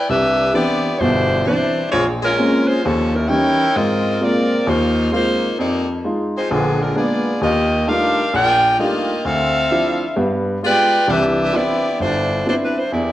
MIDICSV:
0, 0, Header, 1, 3, 480
1, 0, Start_track
1, 0, Tempo, 458015
1, 90, Time_signature, 4, 2, 24, 8
1, 13751, End_track
2, 0, Start_track
2, 0, Title_t, "Saxophone section"
2, 0, Program_c, 0, 65
2, 101, Note_on_c, 0, 62, 104
2, 101, Note_on_c, 0, 71, 99
2, 102, Note_on_c, 0, 67, 89
2, 104, Note_on_c, 0, 76, 111
2, 564, Note_off_c, 0, 67, 0
2, 575, Note_on_c, 0, 64, 90
2, 576, Note_off_c, 0, 62, 0
2, 576, Note_off_c, 0, 71, 0
2, 577, Note_on_c, 0, 59, 95
2, 577, Note_on_c, 0, 67, 102
2, 578, Note_off_c, 0, 76, 0
2, 578, Note_on_c, 0, 74, 110
2, 1019, Note_off_c, 0, 64, 0
2, 1020, Note_off_c, 0, 67, 0
2, 1021, Note_off_c, 0, 59, 0
2, 1021, Note_off_c, 0, 74, 0
2, 1045, Note_on_c, 0, 72, 102
2, 1048, Note_on_c, 0, 55, 80
2, 1048, Note_on_c, 0, 64, 91
2, 1053, Note_on_c, 0, 62, 91
2, 1504, Note_off_c, 0, 55, 0
2, 1508, Note_off_c, 0, 62, 0
2, 1509, Note_off_c, 0, 64, 0
2, 1510, Note_off_c, 0, 72, 0
2, 1517, Note_on_c, 0, 55, 88
2, 1521, Note_on_c, 0, 62, 83
2, 1521, Note_on_c, 0, 64, 86
2, 1523, Note_on_c, 0, 72, 99
2, 1970, Note_off_c, 0, 55, 0
2, 1972, Note_off_c, 0, 62, 0
2, 1973, Note_off_c, 0, 64, 0
2, 1973, Note_off_c, 0, 72, 0
2, 1999, Note_on_c, 0, 56, 93
2, 2001, Note_on_c, 0, 60, 83
2, 2003, Note_on_c, 0, 65, 87
2, 2003, Note_on_c, 0, 73, 95
2, 2148, Note_off_c, 0, 56, 0
2, 2150, Note_off_c, 0, 60, 0
2, 2151, Note_off_c, 0, 65, 0
2, 2151, Note_off_c, 0, 73, 0
2, 2332, Note_on_c, 0, 61, 97
2, 2333, Note_on_c, 0, 56, 91
2, 2333, Note_on_c, 0, 65, 85
2, 2334, Note_on_c, 0, 70, 105
2, 2781, Note_off_c, 0, 56, 0
2, 2781, Note_off_c, 0, 61, 0
2, 2781, Note_off_c, 0, 65, 0
2, 2782, Note_off_c, 0, 70, 0
2, 2807, Note_on_c, 0, 65, 92
2, 2807, Note_on_c, 0, 72, 99
2, 2809, Note_on_c, 0, 61, 90
2, 2815, Note_on_c, 0, 56, 93
2, 2959, Note_off_c, 0, 61, 0
2, 2968, Note_off_c, 0, 65, 0
2, 2968, Note_off_c, 0, 72, 0
2, 2971, Note_off_c, 0, 56, 0
2, 2972, Note_on_c, 0, 61, 79
2, 2973, Note_on_c, 0, 58, 78
2, 2977, Note_on_c, 0, 69, 108
2, 2978, Note_on_c, 0, 53, 83
2, 3286, Note_off_c, 0, 61, 0
2, 3291, Note_on_c, 0, 70, 87
2, 3292, Note_on_c, 0, 64, 77
2, 3295, Note_on_c, 0, 55, 80
2, 3297, Note_off_c, 0, 58, 0
2, 3298, Note_on_c, 0, 61, 77
2, 3300, Note_off_c, 0, 53, 0
2, 3300, Note_off_c, 0, 69, 0
2, 3432, Note_off_c, 0, 70, 0
2, 3433, Note_off_c, 0, 64, 0
2, 3444, Note_on_c, 0, 79, 108
2, 3445, Note_on_c, 0, 64, 103
2, 3445, Note_on_c, 0, 70, 95
2, 3446, Note_on_c, 0, 73, 92
2, 3451, Note_off_c, 0, 55, 0
2, 3453, Note_off_c, 0, 61, 0
2, 3921, Note_off_c, 0, 70, 0
2, 3928, Note_off_c, 0, 79, 0
2, 3929, Note_off_c, 0, 64, 0
2, 3929, Note_off_c, 0, 73, 0
2, 3934, Note_on_c, 0, 70, 92
2, 3938, Note_on_c, 0, 75, 107
2, 3939, Note_on_c, 0, 60, 87
2, 3939, Note_on_c, 0, 65, 95
2, 4408, Note_off_c, 0, 65, 0
2, 4411, Note_off_c, 0, 60, 0
2, 4413, Note_off_c, 0, 70, 0
2, 4416, Note_off_c, 0, 75, 0
2, 4420, Note_on_c, 0, 65, 88
2, 4423, Note_on_c, 0, 60, 89
2, 4423, Note_on_c, 0, 74, 100
2, 4424, Note_on_c, 0, 70, 99
2, 4884, Note_off_c, 0, 65, 0
2, 4893, Note_on_c, 0, 58, 91
2, 4896, Note_on_c, 0, 63, 92
2, 4897, Note_on_c, 0, 65, 88
2, 4898, Note_off_c, 0, 60, 0
2, 4898, Note_off_c, 0, 70, 0
2, 4898, Note_off_c, 0, 74, 0
2, 4898, Note_on_c, 0, 72, 94
2, 5372, Note_off_c, 0, 65, 0
2, 5373, Note_off_c, 0, 58, 0
2, 5375, Note_off_c, 0, 63, 0
2, 5376, Note_off_c, 0, 72, 0
2, 5385, Note_on_c, 0, 65, 84
2, 5387, Note_on_c, 0, 72, 107
2, 5389, Note_on_c, 0, 58, 88
2, 5390, Note_on_c, 0, 63, 80
2, 5826, Note_off_c, 0, 65, 0
2, 5827, Note_off_c, 0, 72, 0
2, 5828, Note_off_c, 0, 58, 0
2, 5828, Note_off_c, 0, 63, 0
2, 5859, Note_on_c, 0, 58, 81
2, 5859, Note_on_c, 0, 63, 88
2, 5859, Note_on_c, 0, 67, 71
2, 5861, Note_on_c, 0, 74, 82
2, 6158, Note_off_c, 0, 58, 0
2, 6158, Note_off_c, 0, 63, 0
2, 6158, Note_off_c, 0, 67, 0
2, 6159, Note_off_c, 0, 74, 0
2, 6675, Note_on_c, 0, 56, 85
2, 6675, Note_on_c, 0, 63, 87
2, 6677, Note_on_c, 0, 65, 76
2, 6677, Note_on_c, 0, 72, 92
2, 6811, Note_off_c, 0, 56, 0
2, 6811, Note_off_c, 0, 63, 0
2, 6812, Note_off_c, 0, 65, 0
2, 6812, Note_off_c, 0, 72, 0
2, 6826, Note_on_c, 0, 53, 81
2, 6827, Note_on_c, 0, 59, 81
2, 6828, Note_on_c, 0, 62, 77
2, 6830, Note_on_c, 0, 68, 88
2, 7140, Note_off_c, 0, 62, 0
2, 7144, Note_off_c, 0, 53, 0
2, 7144, Note_off_c, 0, 59, 0
2, 7146, Note_off_c, 0, 68, 0
2, 7148, Note_on_c, 0, 70, 74
2, 7149, Note_on_c, 0, 65, 72
2, 7151, Note_on_c, 0, 56, 68
2, 7153, Note_on_c, 0, 62, 70
2, 7295, Note_off_c, 0, 65, 0
2, 7298, Note_off_c, 0, 70, 0
2, 7299, Note_off_c, 0, 56, 0
2, 7300, Note_off_c, 0, 62, 0
2, 7302, Note_on_c, 0, 59, 78
2, 7304, Note_on_c, 0, 68, 84
2, 7305, Note_on_c, 0, 74, 93
2, 7308, Note_on_c, 0, 65, 82
2, 7744, Note_off_c, 0, 59, 0
2, 7745, Note_off_c, 0, 68, 0
2, 7745, Note_off_c, 0, 74, 0
2, 7747, Note_off_c, 0, 65, 0
2, 7786, Note_on_c, 0, 75, 113
2, 7787, Note_on_c, 0, 58, 95
2, 7787, Note_on_c, 0, 67, 95
2, 7789, Note_on_c, 0, 65, 87
2, 8226, Note_off_c, 0, 58, 0
2, 8226, Note_off_c, 0, 67, 0
2, 8226, Note_off_c, 0, 75, 0
2, 8227, Note_off_c, 0, 65, 0
2, 8259, Note_on_c, 0, 67, 88
2, 8260, Note_on_c, 0, 62, 97
2, 8260, Note_on_c, 0, 77, 110
2, 8261, Note_on_c, 0, 70, 102
2, 8725, Note_off_c, 0, 70, 0
2, 8735, Note_off_c, 0, 67, 0
2, 8736, Note_off_c, 0, 62, 0
2, 8736, Note_off_c, 0, 77, 0
2, 8737, Note_on_c, 0, 70, 101
2, 8738, Note_on_c, 0, 74, 91
2, 8741, Note_on_c, 0, 65, 108
2, 8745, Note_on_c, 0, 79, 125
2, 9181, Note_off_c, 0, 70, 0
2, 9181, Note_off_c, 0, 74, 0
2, 9183, Note_off_c, 0, 65, 0
2, 9185, Note_off_c, 0, 79, 0
2, 9222, Note_on_c, 0, 58, 95
2, 9225, Note_on_c, 0, 65, 88
2, 9226, Note_on_c, 0, 75, 104
2, 9230, Note_on_c, 0, 67, 89
2, 9697, Note_off_c, 0, 58, 0
2, 9698, Note_off_c, 0, 65, 0
2, 9698, Note_off_c, 0, 75, 0
2, 9699, Note_on_c, 0, 77, 105
2, 9700, Note_off_c, 0, 67, 0
2, 9701, Note_on_c, 0, 60, 95
2, 9702, Note_on_c, 0, 69, 86
2, 9702, Note_on_c, 0, 76, 95
2, 10656, Note_off_c, 0, 60, 0
2, 10656, Note_off_c, 0, 69, 0
2, 10921, Note_off_c, 0, 77, 0
2, 10923, Note_off_c, 0, 76, 0
2, 11155, Note_on_c, 0, 65, 101
2, 11155, Note_on_c, 0, 74, 103
2, 11156, Note_on_c, 0, 71, 107
2, 11158, Note_on_c, 0, 79, 115
2, 11590, Note_off_c, 0, 65, 0
2, 11590, Note_off_c, 0, 74, 0
2, 11591, Note_off_c, 0, 71, 0
2, 11592, Note_off_c, 0, 79, 0
2, 11626, Note_on_c, 0, 76, 115
2, 11627, Note_on_c, 0, 62, 94
2, 11629, Note_on_c, 0, 67, 94
2, 11631, Note_on_c, 0, 71, 105
2, 12092, Note_off_c, 0, 67, 0
2, 12098, Note_off_c, 0, 76, 0
2, 12099, Note_off_c, 0, 62, 0
2, 12101, Note_off_c, 0, 71, 0
2, 12105, Note_on_c, 0, 67, 93
2, 12108, Note_on_c, 0, 59, 96
2, 12108, Note_on_c, 0, 64, 101
2, 12110, Note_on_c, 0, 74, 104
2, 12578, Note_off_c, 0, 67, 0
2, 12579, Note_off_c, 0, 59, 0
2, 12579, Note_off_c, 0, 64, 0
2, 12580, Note_off_c, 0, 74, 0
2, 12595, Note_on_c, 0, 64, 80
2, 12598, Note_on_c, 0, 72, 100
2, 12599, Note_on_c, 0, 55, 89
2, 12602, Note_on_c, 0, 62, 86
2, 13030, Note_off_c, 0, 64, 0
2, 13031, Note_off_c, 0, 72, 0
2, 13032, Note_off_c, 0, 55, 0
2, 13034, Note_off_c, 0, 62, 0
2, 13086, Note_on_c, 0, 64, 77
2, 13086, Note_on_c, 0, 72, 92
2, 13087, Note_on_c, 0, 55, 83
2, 13087, Note_on_c, 0, 62, 84
2, 13150, Note_off_c, 0, 64, 0
2, 13150, Note_off_c, 0, 72, 0
2, 13151, Note_off_c, 0, 55, 0
2, 13151, Note_off_c, 0, 62, 0
2, 13232, Note_on_c, 0, 64, 74
2, 13235, Note_on_c, 0, 55, 71
2, 13235, Note_on_c, 0, 62, 72
2, 13235, Note_on_c, 0, 71, 91
2, 13371, Note_off_c, 0, 64, 0
2, 13372, Note_off_c, 0, 55, 0
2, 13372, Note_off_c, 0, 62, 0
2, 13372, Note_off_c, 0, 71, 0
2, 13392, Note_on_c, 0, 62, 73
2, 13392, Note_on_c, 0, 72, 83
2, 13393, Note_on_c, 0, 55, 78
2, 13394, Note_on_c, 0, 64, 77
2, 13537, Note_off_c, 0, 64, 0
2, 13541, Note_off_c, 0, 62, 0
2, 13541, Note_off_c, 0, 72, 0
2, 13542, Note_off_c, 0, 55, 0
2, 13550, Note_on_c, 0, 64, 85
2, 13554, Note_on_c, 0, 58, 76
2, 13555, Note_on_c, 0, 74, 87
2, 13558, Note_on_c, 0, 67, 81
2, 13751, Note_off_c, 0, 58, 0
2, 13751, Note_off_c, 0, 64, 0
2, 13751, Note_off_c, 0, 67, 0
2, 13751, Note_off_c, 0, 74, 0
2, 13751, End_track
3, 0, Start_track
3, 0, Title_t, "Grand piano"
3, 0, Program_c, 1, 0
3, 97, Note_on_c, 1, 36, 72
3, 511, Note_off_c, 1, 36, 0
3, 564, Note_on_c, 1, 52, 54
3, 566, Note_on_c, 1, 59, 47
3, 568, Note_on_c, 1, 62, 56
3, 570, Note_on_c, 1, 60, 47
3, 908, Note_off_c, 1, 52, 0
3, 909, Note_off_c, 1, 59, 0
3, 910, Note_off_c, 1, 62, 0
3, 911, Note_off_c, 1, 60, 0
3, 1055, Note_on_c, 1, 31, 78
3, 1058, Note_on_c, 1, 47, 78
3, 1471, Note_off_c, 1, 31, 0
3, 1472, Note_off_c, 1, 47, 0
3, 1536, Note_on_c, 1, 52, 46
3, 1544, Note_on_c, 1, 59, 46
3, 1545, Note_on_c, 1, 60, 47
3, 1549, Note_on_c, 1, 62, 50
3, 1874, Note_off_c, 1, 52, 0
3, 1878, Note_off_c, 1, 59, 0
3, 1878, Note_off_c, 1, 60, 0
3, 1881, Note_off_c, 1, 62, 0
3, 2021, Note_on_c, 1, 34, 71
3, 2435, Note_off_c, 1, 34, 0
3, 2497, Note_on_c, 1, 56, 50
3, 2505, Note_on_c, 1, 58, 48
3, 2507, Note_on_c, 1, 60, 49
3, 2511, Note_on_c, 1, 61, 58
3, 2835, Note_off_c, 1, 56, 0
3, 2839, Note_off_c, 1, 58, 0
3, 2840, Note_off_c, 1, 60, 0
3, 2842, Note_off_c, 1, 61, 0
3, 2989, Note_on_c, 1, 39, 75
3, 3399, Note_off_c, 1, 39, 0
3, 3452, Note_on_c, 1, 52, 50
3, 3458, Note_on_c, 1, 55, 47
3, 3460, Note_on_c, 1, 61, 46
3, 3464, Note_on_c, 1, 63, 48
3, 3793, Note_off_c, 1, 52, 0
3, 3795, Note_off_c, 1, 55, 0
3, 3796, Note_off_c, 1, 61, 0
3, 3799, Note_off_c, 1, 63, 0
3, 3940, Note_on_c, 1, 44, 77
3, 4354, Note_off_c, 1, 44, 0
3, 4407, Note_on_c, 1, 58, 49
3, 4408, Note_on_c, 1, 56, 48
3, 4411, Note_on_c, 1, 60, 49
3, 4412, Note_on_c, 1, 65, 56
3, 4750, Note_off_c, 1, 58, 0
3, 4751, Note_off_c, 1, 56, 0
3, 4752, Note_off_c, 1, 60, 0
3, 4752, Note_off_c, 1, 65, 0
3, 4891, Note_on_c, 1, 39, 77
3, 5309, Note_off_c, 1, 39, 0
3, 5364, Note_on_c, 1, 56, 47
3, 5365, Note_on_c, 1, 58, 45
3, 5369, Note_on_c, 1, 60, 44
3, 5374, Note_on_c, 1, 65, 57
3, 5709, Note_off_c, 1, 56, 0
3, 5709, Note_off_c, 1, 58, 0
3, 5711, Note_off_c, 1, 60, 0
3, 5714, Note_off_c, 1, 65, 0
3, 5853, Note_on_c, 1, 41, 77
3, 6270, Note_off_c, 1, 41, 0
3, 6335, Note_on_c, 1, 56, 49
3, 6338, Note_on_c, 1, 63, 44
3, 6342, Note_on_c, 1, 65, 51
3, 6674, Note_off_c, 1, 56, 0
3, 6675, Note_off_c, 1, 63, 0
3, 6677, Note_off_c, 1, 65, 0
3, 6821, Note_on_c, 1, 34, 78
3, 6821, Note_on_c, 1, 50, 74
3, 7234, Note_off_c, 1, 34, 0
3, 7234, Note_off_c, 1, 50, 0
3, 7289, Note_on_c, 1, 56, 44
3, 7290, Note_on_c, 1, 58, 44
3, 7294, Note_on_c, 1, 59, 45
3, 7295, Note_on_c, 1, 62, 51
3, 7631, Note_off_c, 1, 56, 0
3, 7631, Note_off_c, 1, 58, 0
3, 7633, Note_off_c, 1, 59, 0
3, 7634, Note_off_c, 1, 62, 0
3, 7768, Note_on_c, 1, 39, 77
3, 8187, Note_off_c, 1, 39, 0
3, 8251, Note_on_c, 1, 57, 48
3, 8252, Note_on_c, 1, 55, 48
3, 8255, Note_on_c, 1, 62, 47
3, 8257, Note_on_c, 1, 63, 47
3, 8259, Note_on_c, 1, 65, 57
3, 8591, Note_off_c, 1, 57, 0
3, 8592, Note_off_c, 1, 55, 0
3, 8594, Note_off_c, 1, 62, 0
3, 8594, Note_off_c, 1, 63, 0
3, 8595, Note_off_c, 1, 65, 0
3, 8736, Note_on_c, 1, 34, 81
3, 9151, Note_off_c, 1, 34, 0
3, 9206, Note_on_c, 1, 55, 45
3, 9208, Note_on_c, 1, 57, 42
3, 9210, Note_on_c, 1, 62, 45
3, 9211, Note_on_c, 1, 65, 57
3, 9212, Note_on_c, 1, 63, 42
3, 9549, Note_off_c, 1, 55, 0
3, 9549, Note_off_c, 1, 57, 0
3, 9551, Note_off_c, 1, 62, 0
3, 9551, Note_off_c, 1, 65, 0
3, 9552, Note_off_c, 1, 63, 0
3, 9691, Note_on_c, 1, 38, 78
3, 10109, Note_off_c, 1, 38, 0
3, 10176, Note_on_c, 1, 53, 49
3, 10179, Note_on_c, 1, 62, 53
3, 10181, Note_on_c, 1, 60, 42
3, 10186, Note_on_c, 1, 64, 57
3, 10514, Note_off_c, 1, 53, 0
3, 10515, Note_off_c, 1, 62, 0
3, 10516, Note_off_c, 1, 60, 0
3, 10519, Note_off_c, 1, 64, 0
3, 10648, Note_on_c, 1, 59, 68
3, 10652, Note_on_c, 1, 43, 73
3, 11067, Note_off_c, 1, 59, 0
3, 11069, Note_off_c, 1, 43, 0
3, 11136, Note_on_c, 1, 56, 49
3, 11139, Note_on_c, 1, 65, 51
3, 11140, Note_on_c, 1, 59, 44
3, 11144, Note_on_c, 1, 67, 53
3, 11474, Note_off_c, 1, 56, 0
3, 11475, Note_off_c, 1, 65, 0
3, 11476, Note_off_c, 1, 59, 0
3, 11477, Note_off_c, 1, 67, 0
3, 11608, Note_on_c, 1, 52, 77
3, 11610, Note_on_c, 1, 36, 78
3, 12026, Note_off_c, 1, 52, 0
3, 12028, Note_off_c, 1, 36, 0
3, 12082, Note_on_c, 1, 59, 55
3, 12085, Note_on_c, 1, 60, 47
3, 12089, Note_on_c, 1, 64, 59
3, 12091, Note_on_c, 1, 62, 47
3, 12427, Note_off_c, 1, 59, 0
3, 12428, Note_off_c, 1, 60, 0
3, 12430, Note_off_c, 1, 64, 0
3, 12431, Note_off_c, 1, 62, 0
3, 12580, Note_on_c, 1, 31, 73
3, 12993, Note_off_c, 1, 31, 0
3, 13056, Note_on_c, 1, 59, 44
3, 13060, Note_on_c, 1, 60, 47
3, 13066, Note_on_c, 1, 62, 46
3, 13066, Note_on_c, 1, 64, 49
3, 13394, Note_off_c, 1, 59, 0
3, 13396, Note_off_c, 1, 60, 0
3, 13398, Note_off_c, 1, 62, 0
3, 13398, Note_off_c, 1, 64, 0
3, 13540, Note_on_c, 1, 40, 75
3, 13751, Note_off_c, 1, 40, 0
3, 13751, End_track
0, 0, End_of_file